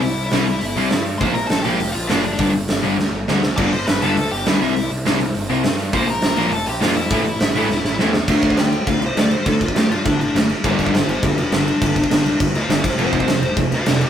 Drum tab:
CC |----------------|----------------|----------------|x---------------|
HH |o-o-o-o-o-o-o-o-|o-o-o-o-o-o-o-o-|o-o-o-o---------|--o-o-o-o-o-o-o-|
SD |----o-------o---|----o-------o---|----o---o---o-o-|----o-------o---|
BD |----------------|o---------------|o---------------|o---------------|

CC |----------------|----------------|----------------|x-x-x-x-x-x-x-x-|
HH |o-o-o-o-o-o-o-o-|o-o-o-o-o-o-o-o-|o-o-o-o---------|----------------|
SD |----o-------o---|----o-------o---|----o---o-o-o-o-|----o-------o---|
BD |----------------|o---------------|o---------------|o-oo----o-------|

CC |x-x-x-x-x-x-x-x-|x-x-x-x-x-x-x-x-|x-x-x-x-x-x-x-x-|x-x-x-x-x-x-x-x-|
HH |----------------|----------------|----------------|----------------|
SD |----o-------o---|----o-------o---|----o-------o---|----o-------o---|
BD |o-oo----o-------|o-oo----o-------|o-oo----o-----o-|--oo----o-------|